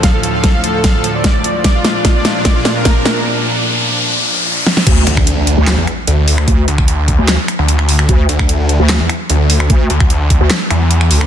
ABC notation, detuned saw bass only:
X:1
M:4/4
L:1/16
Q:1/4=149
K:Dm
V:1 name="Detuned saw bass" clef=bass
z16 | z16 | z16 | z2 D,,3 D,,2 z2 E,, z2 D,,4 |
z2 D,,3 D,,2 z4 D,,4 D,, | z2 D,,3 D,,2 z2 E,, z2 D,,4 | z2 D,,3 D,,2 z3 E,,4 D,,2 |]